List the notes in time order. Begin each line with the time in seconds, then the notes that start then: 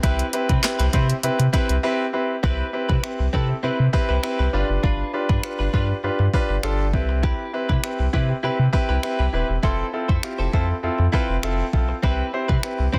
0.03 C2 C4 E4 G4 B4, kick, closed hi-hat
0.19 closed hi-hat
0.33 C4 E4 G4 B4, muted clean electric guitar stroke, closed hi-hat
0.49 C3 C4 E4 B4, kick, closed hi-hat
0.63 C4 E4 G4 B4, muted clean electric guitar stroke, snare, clap, closed hi-hat
0.79 C2 C4 E4 B4, closed hi-hat
0.93 C3 C4 E4 G4 B4 C5, kick, closed hi-hat
1.09 muted clean electric guitar stroke, closed hi-hat
1.23 C3 C4 E4 G4 B4, closed hi-hat
1.39 C3, muted clean electric guitar stroke, closed hi-hat
1.53 C4 E4 G4 B4, kick, closed hi-hat
1.69 C2, muted clean electric guitar stroke, closed hi-hat
1.83 C4 E4 G4 B4
2.13 C4 E4 G4 B4
2.43 C2 C4 E4 G4 B4, kick
2.73 C4 E4 G4 B4, muted clean electric guitar stroke
2.89 C3 C4 E4 B4, kick
3.03 C4 E4 G4 B4, finger snap, muted clean electric guitar stroke
3.19 C2, muted clean electric guitar stroke
3.33 C3 C4 E4 G4 A4 B4, kick
3.49 muted clean electric guitar stroke
3.63 C3 C4 E4 G4 B4
3.79 C3, muted clean electric guitar stroke
3.93 C4 E4 G4 B4, muted clean electric guitar stroke, kick
4.09 C2 C4 E4 B4
4.23 C4 E4 G4 B4, finger snap, muted clean electric guitar stroke
4.39 C2 C4 E4 B4
4.53 G1 D4 F4 G4 B4
4.69 F#1, muted clean electric guitar stroke
4.83 G1 D4 F4 B4, kick
5.13 D4 F4 G4 B4, muted clean electric guitar stroke
5.29 G2 D4 F4 B4, kick
5.43 D4 F4 G4 B4, finger snap, muted clean electric guitar stroke
5.59 G1 D4 F4 B4
5.73 G2 D4 F4 G4 B4, kick
5.89 muted clean electric guitar stroke
6.03 G2 D4 F4 G4 B4, muted clean electric guitar stroke
6.19 G2, muted clean electric guitar stroke
6.34 D4 F4 G4 B4, kick
6.49 G1, muted clean electric guitar stroke
6.63 G1 D4 F4 G4 A4, finger snap, muted clean electric guitar stroke
6.79 muted clean electric guitar stroke
6.93 C2 C4 E4 G4 B4, kick
7.09 muted clean electric guitar stroke
7.23 E4 G4 B4, kick
7.53 C4 E4 G4 B4, muted clean electric guitar stroke
7.69 C3 E4 G4 B4, kick
7.83 C4 E4 G4 B4, finger snap, muted clean electric guitar stroke
7.99 C2, muted clean electric guitar stroke
8.13 C3 C4 E4 G4 B4, kick
8.29 muted clean electric guitar stroke
8.43 C3 C4 E4 G4 B4
8.59 C3, muted clean electric guitar stroke
8.73 C4 E4 G4 B4, muted clean electric guitar stroke, kick
8.89 C2 E4 G4 B4
9.03 C4 E4 G4 B4, finger snap, muted clean electric guitar stroke
9.19 C2 E4 G4 B4
9.33 D#1 C4 E4 G4 B4
9.49 E1, muted clean electric guitar stroke
9.63 F1 C4 E4 F4 A4 C5, kick
9.93 C4 E4 F4 A4, muted clean electric guitar stroke
10.08 F2 E4 A4 C5, kick
10.23 C4 E4 F4 G4, finger snap, muted clean electric guitar stroke
10.39 F1 E4 A4 C5
10.53 F2 C4 E4 F4 A4 C5, kick
10.69 muted clean electric guitar stroke
10.83 F2 C4 E4 F4 A4
10.99 F2, muted clean electric guitar stroke
11.12 C4 E4 F4 A4 B4 C5, kick
11.29 F1, muted clean electric guitar stroke
11.43 F1 C4 E4 F4 A4, finger snap, muted clean electric guitar stroke
11.58 muted clean electric guitar stroke
11.73 B1 C4 E4 F4 A4, kick
11.89 muted clean electric guitar stroke
12.03 C2 C4 E4 G4 B4, kick
12.33 C4 E4 G4 C5, muted clean electric guitar stroke
12.48 C3 C4 E4 B4, kick
12.63 C4 E4 G4 B4, finger snap, muted clean electric guitar stroke
12.79 C2, muted clean electric guitar stroke
12.93 C3 C4 E4 G4 B4 C5, kick